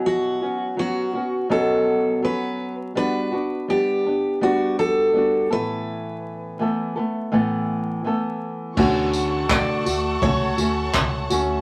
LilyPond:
<<
  \new Staff \with { instrumentName = "String section" } { \time 4/4 \key d \major \tempo 4 = 83 r1 | r1 | r1 | <a' fis'' a'' cis'''>1 | }
  \new Staff \with { instrumentName = "Steel-string acoustic guitar" } { \time 4/4 \key d \major fis'4 fis'4 a'4 b'8. r16 | b'4 g'4 fis'8 a'4 b'8~ | b'2. r4 | r4 d''4 cis''2 | }
  \new Staff \with { instrumentName = "Nylon-string guitar" } { \time 4/4 \key d \major <b, fis b cis' fis'>8 <b cis' fis'>8 <fis b cis' fis'>8 <b cis' fis'>8 <b, fis b cis' fis'>4 <fis b cis' fis'>4 | <g b d' fis'>8 <b d' fis'>8 <g b d'>8 <b d'>8 <g b d' fis'>4 <g b d' fis'>8 <a, e a b a'>8~ | <a, e a b a'>4 <e a b a'>8 <a b a'>8 <a, e a b a'>4 <e a b a'>4 | <d a cis' fis'>4 <d a fis'>8 <a fis'>8 <a cis' fis'>8 <a cis' fis'>4 <a cis' fis'>8 | }
  \new Staff \with { instrumentName = "Fingered electric bass" } { \clef bass \time 4/4 \key d \major r1 | r1 | r1 | d,4~ d,16 r16 d,8 cis,8 d,8 cis,8 d,8 | }
  \new DrumStaff \with { instrumentName = "Drums" } \drummode { \time 4/4 r4 r4 r4 r4 | r4 r4 r4 r4 | r4 r4 r4 r4 | <cymc bd>8 tamb8 <hc bd>8 tamb8 bd8 tamb8 <hc bd>8 tamb8 | }
>>